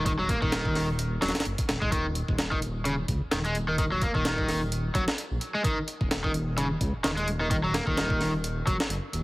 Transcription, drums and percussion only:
0.06 kick, closed hi-hat
0.29 kick, closed hi-hat
0.42 kick
0.52 snare, closed hi-hat
0.65 kick
0.75 snare, open hi-hat
0.99 closed hi-hat
1.22 snare, closed hi-hat
1.28 snare, closed hi-hat
1.35 snare, closed hi-hat
1.40 snare, closed hi-hat
1.45 closed hi-hat
1.58 kick, closed hi-hat
1.69 snare, closed hi-hat
1.82 kick
1.92 kick, closed hi-hat
2.15 closed hi-hat
2.28 kick
2.39 snare, closed hi-hat
2.52 kick
2.62 closed hi-hat
2.85 closed hi-hat
3.08 kick, closed hi-hat
3.32 snare, closed hi-hat
3.45 closed hi-hat
3.55 closed hi-hat
3.78 kick, closed hi-hat
4.02 kick, closed hi-hat
4.15 kick
4.25 snare, closed hi-hat
4.38 kick
4.49 snare, open hi-hat
4.72 closed hi-hat
4.95 kick, closed hi-hat
5.08 snare
5.18 closed hi-hat
5.41 closed hi-hat
5.64 kick, closed hi-hat
5.88 closed hi-hat
6.01 kick
6.11 snare, closed hi-hat
6.24 kick
6.34 closed hi-hat
6.58 closed hi-hat
6.81 kick, closed hi-hat
7.04 snare, closed hi-hat
7.17 closed hi-hat
7.28 closed hi-hat
7.51 kick, closed hi-hat
7.74 snare, closed hi-hat
7.87 kick
7.97 snare, closed hi-hat
8.10 kick
8.21 snare, open hi-hat
8.44 closed hi-hat
8.67 kick, closed hi-hat
8.80 snare
8.90 closed hi-hat
9.13 closed hi-hat

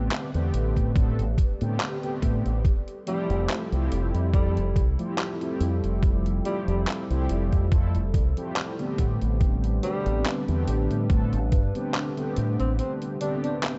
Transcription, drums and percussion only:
0.11 clap, closed hi-hat
0.34 closed hi-hat
0.54 closed hi-hat
0.76 kick, closed hi-hat
0.96 kick, closed hi-hat
1.19 closed hi-hat
1.38 kick, closed hi-hat
1.61 closed hi-hat
1.80 clap, closed hi-hat
2.03 closed hi-hat
2.22 kick, closed hi-hat
2.46 closed hi-hat
2.65 kick, closed hi-hat
2.88 closed hi-hat
3.07 closed hi-hat
3.30 closed hi-hat
3.49 clap, closed hi-hat
3.72 closed hi-hat
3.92 closed hi-hat
4.15 closed hi-hat
4.34 kick, closed hi-hat
4.57 closed hi-hat
4.76 kick, closed hi-hat
4.99 closed hi-hat
5.18 clap, closed hi-hat
5.41 closed hi-hat
5.61 closed hi-hat
5.84 closed hi-hat
6.03 kick, closed hi-hat
6.26 closed hi-hat
6.45 closed hi-hat
6.68 closed hi-hat
6.87 clap, closed hi-hat
7.11 closed hi-hat
7.29 closed hi-hat
7.52 kick, closed hi-hat
7.72 kick, closed hi-hat
7.95 closed hi-hat
8.14 kick, closed hi-hat
8.37 closed hi-hat
8.56 clap, closed hi-hat
8.79 closed hi-hat
8.98 kick, closed hi-hat
9.21 closed hi-hat
9.41 kick, closed hi-hat
9.64 closed hi-hat
9.83 closed hi-hat
10.06 closed hi-hat
10.26 clap, closed hi-hat
10.48 closed hi-hat
10.68 closed hi-hat
10.91 closed hi-hat
11.10 kick, closed hi-hat
11.33 closed hi-hat
11.52 kick, closed hi-hat
11.75 closed hi-hat
11.94 clap, closed hi-hat
12.17 closed hi-hat
12.36 closed hi-hat
12.60 closed hi-hat
12.79 closed hi-hat
13.02 closed hi-hat
13.21 closed hi-hat
13.44 closed hi-hat
13.63 clap, closed hi-hat

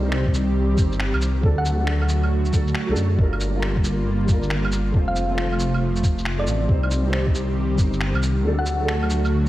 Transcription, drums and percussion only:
0.12 finger snap
0.26 kick
0.34 cabasa, shaker
0.78 kick, cabasa, shaker
0.92 shaker
1.00 finger snap
1.14 claves
1.22 cabasa, shaker
1.43 kick
1.66 cabasa, shaker
1.87 finger snap
2.02 claves
2.09 cabasa, shaker
2.23 claves
2.45 cabasa
2.53 kick, cabasa, shaker
2.67 shaker
2.75 finger snap
2.96 cabasa, shaker
3.19 kick
3.33 claves
3.41 cabasa, shaker
3.62 finger snap
3.77 kick
3.84 cabasa, shaker
4.28 kick, cabasa, shaker
4.43 shaker
4.50 finger snap
4.65 claves
4.72 cabasa, shaker
4.94 kick
5.16 cabasa, shaker
5.38 finger snap
5.53 claves
5.60 cabasa, shaker
5.74 claves
5.96 cabasa
6.04 kick, cabasa, shaker
6.18 shaker
6.25 finger snap
6.47 cabasa, shaker
6.69 kick
6.83 claves
6.91 cabasa, shaker
7.13 finger snap
7.27 kick
7.35 cabasa, shaker
7.78 kick, cabasa, shaker
7.93 shaker
8.01 finger snap
8.15 claves
8.23 cabasa, shaker
8.66 cabasa, shaker
8.88 finger snap
9.03 claves
9.10 cabasa, shaker
9.25 claves, shaker

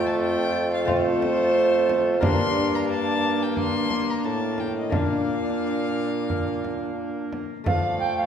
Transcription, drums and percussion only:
0.88 frame drum
1.22 frame drum
1.89 frame drum
2.23 frame drum
3.57 frame drum
3.90 frame drum
4.58 frame drum
4.92 frame drum
6.30 frame drum
6.65 frame drum
7.33 frame drum
7.66 frame drum

